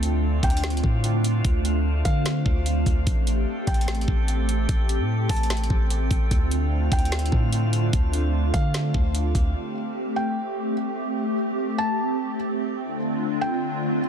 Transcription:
Already playing: D2 D3 A3 C4 D4 F4 C5 F5
0.03 closed hi-hat
0.43 D2 G5, kick, closed hi-hat
0.50 closed hi-hat
0.57 closed hi-hat
0.64 snare, closed hi-hat
0.70 closed hi-hat
0.77 closed hi-hat
0.84 A2, kick
1.04 closed hi-hat
1.24 closed hi-hat
1.45 D2, kick, closed hi-hat
1.65 closed hi-hat
2.05 D3 F5, kick, closed hi-hat
2.26 snare, closed hi-hat
2.46 D2, kick
2.66 closed hi-hat
2.86 D2, kick, closed hi-hat
3.06 A1 C4 G4 A4 G5, kick, closed hi-hat
3.27 closed hi-hat
3.67 A1 G5, kick, closed hi-hat
3.74 closed hi-hat
3.81 closed hi-hat
3.88 snare, closed hi-hat
3.95 closed hi-hat
4.01 closed hi-hat
4.08 A1, kick
4.28 closed hi-hat
4.49 closed hi-hat
4.69 A1, kick, closed hi-hat
4.89 closed hi-hat
4.99 A2
5.29 A1 A5, kick, closed hi-hat, open hi-hat
5.36 closed hi-hat
5.43 closed hi-hat
5.50 snare, closed hi-hat
5.57 closed hi-hat
5.64 closed hi-hat
5.70 A1, kick
5.90 closed hi-hat
6.11 A1, kick, closed hi-hat
6.31 D2 D3 A3 D4 F4 C5 F5, kick, closed hi-hat
6.51 closed hi-hat
6.92 D2 G5, kick, closed hi-hat
6.99 closed hi-hat
7.05 closed hi-hat
7.12 snare, closed hi-hat
7.19 closed hi-hat
7.26 closed hi-hat
7.32 A2, kick
7.52 closed hi-hat
7.73 closed hi-hat
7.93 D2, kick, closed hi-hat
8.13 closed hi-hat
8.54 D3 F5, kick, closed hi-hat
8.74 snare, closed hi-hat
8.94 D2, kick
9.15 closed hi-hat
9.35 D2, kick, closed hi-hat
9.55 A3 C4 G4
10.16 G5
11.78 A5
12.80 D3 A3 D4 F4
13.41 G5

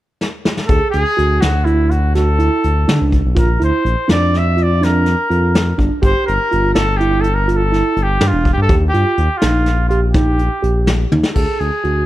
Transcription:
0.21 snare
0.45 snare
0.57 snare
0.67 D2 G#4 A4, kick, closed hi-hat
0.91 D2 G#4, closed hi-hat
1.17 D2 F#4, closed hi-hat
1.41 D2 F#4, snare, closed hi-hat
1.65 E4, closed hi-hat
1.91 F#4, closed hi-hat
2.15 F#4 A4, snare, closed hi-hat
2.39 E4, closed hi-hat
2.64 D2, closed hi-hat
2.88 D3 D4, snare, closed hi-hat
3.02 C#2
3.12 kick, closed hi-hat
3.25 B1
3.35 A#1 F4 A#4, kick, closed hi-hat
3.60 D2 E4, closed hi-hat
3.64 C5
3.85 A#1, closed hi-hat
4.08 F2 D4 D5, snare, closed hi-hat
4.34 E5, snare, closed hi-hat
4.57 F4, closed hi-hat
4.63 D5
4.81 D4 A#4, snare, closed hi-hat
5.06 snare, closed hi-hat
5.30 F2 F4, closed hi-hat
5.55 snare, closed hi-hat
5.78 G1 D4, kick, closed hi-hat
6.02 G1 G4 C5, kick, closed hi-hat
6.26 G1 A#4, closed hi-hat
6.52 G1 F4, closed hi-hat
6.74 G1 A4, snare, closed hi-hat
6.97 E4 G4, closed hi-hat
7.21 A4, closed hi-hat
7.34 A#4
7.48 F4 A#4, closed hi-hat
7.56 A4
7.72 E4, snare, closed hi-hat
7.97 G1, closed hi-hat
8.03 G4
8.21 G2 D4, snare, closed hi-hat
8.27 F4
8.33 E1
8.45 kick, closed hi-hat
8.53 G4
8.58 G2
8.62 A4
8.69 D#2 G4, kick, closed hi-hat
8.88 G4
8.94 G2 F4, closed hi-hat
9.18 D#2, closed hi-hat
9.37 F4
9.42 A#1 D#4, snare, closed hi-hat
9.66 snare, closed hi-hat
9.89 F4 G4, closed hi-hat
10.12 D#4 G4, kick, snare, closed hi-hat
10.39 closed hi-hat
10.63 A#1 G4, closed hi-hat
10.87 snare, closed hi-hat
11.12 D#2 D#4, high tom
11.23 snare
11.34 D2 G#4 A4, kick, crash
11.60 D2 G#4, closed hi-hat
11.84 D2 F#4, closed hi-hat

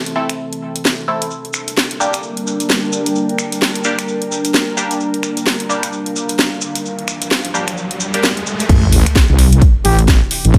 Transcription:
Already playing: E3 A3 C4 A4 E5 A5
0.06 closed hi-hat
0.16 A3 C4 E4 A4
0.29 finger snap, closed hi-hat
0.53 closed hi-hat
0.76 closed hi-hat
0.85 snare
1.08 A3 C4 E4 A4
1.22 closed hi-hat
1.30 G3 A#3 D4 A#4, maracas
1.45 closed hi-hat
1.53 A#4, finger snap, maracas
1.68 closed hi-hat, maracas
1.75 G5, snare, maracas
1.84 A#5
1.91 closed hi-hat
2.00 G3 A#3 D4 G4, maracas
2.13 finger snap, closed hi-hat, maracas
2.23 maracas
2.37 closed hi-hat
2.47 maracas
2.60 closed hi-hat, maracas
2.70 snare, maracas
2.92 maracas
3.06 closed hi-hat, maracas
3.16 maracas
3.29 closed hi-hat
3.38 finger snap, maracas
3.52 closed hi-hat, maracas
3.62 snare, maracas
3.75 closed hi-hat
3.84 G3 A#3 D4 G4, maracas
3.98 finger snap, closed hi-hat, maracas
4.08 maracas
4.22 closed hi-hat
4.32 maracas
4.45 closed hi-hat, maracas
4.54 snare, maracas
4.77 G3 A#3 D4 G4, maracas
4.91 closed hi-hat, maracas
5.00 F5, riser, maracas
5.14 closed hi-hat
5.23 finger snap, maracas
5.37 closed hi-hat, maracas
5.47 snare, maracas
5.60 closed hi-hat
5.69 G3 A#3 D4 G4, maracas
5.83 finger snap, closed hi-hat, maracas
5.93 maracas
6.06 closed hi-hat
6.16 maracas
6.29 closed hi-hat, maracas
6.39 snare, maracas
6.61 maracas
6.75 closed hi-hat, maracas
6.86 maracas
6.99 closed hi-hat
7.08 finger snap, maracas
7.22 closed hi-hat, maracas
7.31 snare, maracas
7.45 closed hi-hat
7.54 G3 A#3 D4 G4, maracas
7.67 finger snap, closed hi-hat, maracas
7.77 maracas
7.91 closed hi-hat
8.00 maracas
8.13 G3 A#3 D4 G4, closed hi-hat, maracas
8.24 snare, maracas
8.37 closed hi-hat
8.46 maracas
8.60 closed hi-hat, maracas
8.69 A1 C3 E3 A3 E4, kick, closed hi-hat, crash, sub drop
8.92 open hi-hat
9.06 finger snap, closed hi-hat
9.15 kick, snare, closed hi-hat
9.29 C2
9.39 open hi-hat
9.53 closed hi-hat
9.62 kick, closed hi-hat
9.85 A1 G4, open hi-hat
9.99 closed hi-hat
10.08 kick, snare, closed hi-hat
10.31 open hi-hat
10.45 A1, closed hi-hat
10.54 kick, closed hi-hat

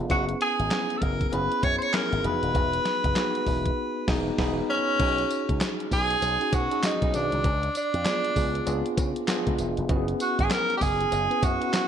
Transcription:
Already playing: B3 D4 F4 G#4 B4
0.09 F#1 B3 C#4 E4 F#4 G#4, kick, closed hi-hat, cowbell
0.29 closed hi-hat
0.41 G#4, closed hi-hat
0.59 G#1, closed hi-hat
0.71 B3 C#4 E4 G#4, snare, clap, closed hi-hat, cowbell
0.90 closed hi-hat
0.97 A4
1.02 F#1 A#4, kick, closed hi-hat
1.21 kick, closed hi-hat
1.28 B3 A#4
1.32 F#1 C#4 E4 G#4 B4, closed hi-hat, cowbell
1.52 closed hi-hat
1.63 F#2 C#5, kick, closed hi-hat, cowbell
1.78 C5, closed hi-hat
1.83 C#5
1.93 B3 C#4 E4 G#4 A#4, snare, clap, closed hi-hat, cowbell
2.12 G#1, closed hi-hat
2.24 E1 B3 D#4 F#4 G#4 B4, closed hi-hat
2.43 D#1, closed hi-hat
2.55 E1, kick, closed hi-hat, cowbell
2.73 closed hi-hat
2.85 snare, closed hi-hat
3.04 F#1, kick, closed hi-hat
3.16 B3 D#4 F#4 G#4, snare, clap, closed hi-hat, cowbell
3.35 closed hi-hat
3.47 E1, kick, open hi-hat
3.66 kick, closed hi-hat
4.08 E1 B3 D#4 G#4, kick, snare, crash
4.38 E1 B3 D#4 G#4 B5, kick, snare, crash
4.70 C#4
4.99 B1 C#4 D#4 F#4 G#4, kick, closed hi-hat, crash, cowbell
5.18 closed hi-hat
5.30 closed hi-hat, tambourine
5.49 C#2, kick, closed hi-hat
5.61 snare, clap, closed hi-hat, tambourine, cowbell
5.80 closed hi-hat
5.91 B1 G#4, kick, open hi-hat, tambourine
6.11 closed hi-hat
6.22 B1, closed hi-hat, tambourine, cowbell
6.41 C#4 D#4 F#4 G#4, closed hi-hat
6.53 B2 F#4, kick, closed hi-hat, tambourine, cowbell
6.71 C#4 D#4 F#4 G#4, closed hi-hat
6.83 D#4, snare, clap, closed hi-hat, tambourine, cowbell
7.02 B1, kick, closed hi-hat
7.13 B1 D#3 D4 F#4 G#4 C#5, closed hi-hat, tambourine
7.32 C2, closed hi-hat
7.44 C#2, kick, closed hi-hat, cowbell
7.63 closed hi-hat
7.75 D4, closed hi-hat, tambourine
7.94 F2, closed hi-hat
8.05 B3 D4 F4 G#4, snare, clap, closed hi-hat, tambourine, cowbell
8.25 closed hi-hat
8.36 C#2 B3 D4 F4 G#4, kick, open hi-hat, tambourine
8.55 closed hi-hat
8.66 C#2 B3 D4 F4 G#4, closed hi-hat, tambourine, cowbell
8.86 closed hi-hat
8.97 C#3, kick, closed hi-hat, tambourine, cowbell
9.16 closed hi-hat
9.28 B3 D4 F4 G#4, snare, clap, closed hi-hat, tambourine, cowbell
9.47 C#2, kick, closed hi-hat
9.58 E1, closed hi-hat, tambourine
9.77 F1, closed hi-hat
9.89 F#1 B3 C#4 E4 F#4, kick, closed hi-hat, cowbell
9.97 G#4
10.08 closed hi-hat
10.20 F#4, closed hi-hat, tambourine
10.39 G#1 G#4, kick, closed hi-hat
10.51 A#4, snare, clap, closed hi-hat, tambourine, cowbell
10.70 closed hi-hat
10.77 G4
10.81 F#1 G#4, kick, open hi-hat, tambourine
11.01 closed hi-hat
11.12 F#1, closed hi-hat, tambourine, cowbell
11.30 B3 C#4 E4 B4, closed hi-hat
11.43 F#2 F#4, kick, closed hi-hat, tambourine, cowbell
11.61 B3 C#4 E4 F#4, closed hi-hat
11.73 snare, clap, closed hi-hat, tambourine, cowbell

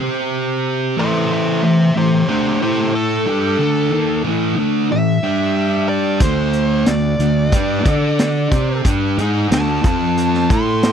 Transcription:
0.00 C4 G4 C5
0.97 A2 E3 A3 C5 E5
1.32 C5 E5
1.63 A2 E3 C5 E5
1.96 A2 E3 G4 C5
2.28 D3 A3 D4 G4 C5
2.61 A3 E4 G4 A4 C5
2.95 A4
3.26 G3 D4 G4
3.59 D3 A3 D4
3.91 D#3 A#3 D#4
4.24 A2 E3 A3
4.56 D3 A3 D4
4.91 A2 E3 E5
5.23 G3 D4 G4
5.89 D5
6.20 D2 D3 A3 D4 C5, kick, closed hi-hat
6.53 closed hi-hat
6.86 D2 D3 A3 D5, snare, closed hi-hat
7.19 D2 D3 A3, closed hi-hat
7.52 G2 G3 D4 G4, kick, closed hi-hat
7.85 D3 D4 A4 D5, kick, closed hi-hat
8.19 snare, closed hi-hat
8.51 C3 C4 G4 C5, kick, closed hi-hat
8.85 G2 G3 D4 G4, kick, closed hi-hat
9.18 G#2 G#3 D#4 G#4, closed hi-hat
9.51 D2 D3 A3 D4 A5, snare, closed hi-hat
9.84 F2 F3 C4 F4 A5, kick, closed hi-hat
10.17 closed hi-hat
10.34 snare
10.50 A2 A3 E4 A4 C6, kick, closed hi-hat
10.83 snare, closed hi-hat

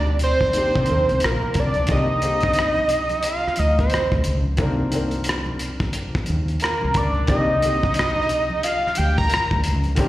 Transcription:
Already playing: D2 D#3 A#3 C4 D4 D#4 G4 D5
0.07 high conga, low conga
0.19 closed hi-hat, muted conga, low conga
0.24 C5
0.41 kick, high conga
0.53 D#3 A#3 C4 D4, closed hi-hat, muted conga
0.58 G4
0.76 C3, kick
0.86 D#3 A#3 C4, closed hi-hat, muted conga, high conga
0.90 D#2 D4 A#4
1.09 C2, closed hi-hat
1.20 closed hi-hat, muted conga
1.24 A#1 A#4, cross-stick
1.43 high conga, low conga
1.54 C2, kick, closed hi-hat
1.59 D5
1.74 closed hi-hat, high conga
1.79 C2
1.87 C2 D#3 A#3 C4 D4, kick, closed hi-hat
1.91 G4 D#5
2.21 D3 D#3 A#3 C4, closed hi-hat, muted conga
2.25 G4
2.41 kick, closed hi-hat
2.54 closed hi-hat, muted conga
2.59 cross-stick
2.76 high conga, low conga
2.89 closed hi-hat, muted conga, low conga
3.09 closed hi-hat, high conga
3.23 F5, closed hi-hat, muted conga
3.47 muted fretless electric bass stroke, cross-stick
3.56 D2 D#5, closed hi-hat, muted conga, high conga
3.79 C5, kick, closed hi-hat
3.90 closed hi-hat
3.94 cross-stick
4.12 D2, kick, high conga, low conga
4.24 C#2, closed hi-hat, muted conga
4.46 high conga
4.57 C2 D#3 A#3 C4 D4, kick, closed hi-hat
4.62 A#4
4.91 D#3 A#3 C4 D4, closed hi-hat, muted conga
4.96 A#4
5.11 closed hi-hat
5.24 closed hi-hat, muted conga
5.29 cross-stick
5.46 high conga, low conga
5.59 closed hi-hat, muted conga, low conga
5.80 kick, cross-stick, high conga
5.93 closed hi-hat, muted conga
6.15 muted fretless electric bass stroke, kick, cross-stick
6.26 D#2, closed hi-hat, muted conga, high conga
6.48 closed hi-hat
6.60 A#4, closed hi-hat
6.64 cross-stick
6.81 C2, high conga, low conga
6.94 C#2 D5, kick, closed hi-hat
7.15 high conga
7.27 C2 D#3 A#3 C4 D4 D#5, kick, closed hi-hat, muted conga
7.31 G4
7.60 D3 D#3 A#3 C4, closed hi-hat
7.65 G4
7.83 kick
7.94 closed hi-hat, muted conga
7.99 cross-stick
8.16 high conga, low conga
8.22 cross-stick
8.29 closed hi-hat, muted conga, low conga
8.50 high conga
8.63 F5, closed hi-hat, muted conga
8.87 muted fretless electric bass stroke, cross-stick
8.95 D2 G5, closed hi-hat, muted conga, high conga
9.18 A#5, kick
9.30 closed hi-hat
9.34 cross-stick
9.51 D2, kick, high conga, low conga
9.63 closed hi-hat, muted conga
9.67 C#2
9.84 closed hi-hat, high conga
9.95 C2 D#3 A#3 C4 D4, kick, closed hi-hat
10.00 G4

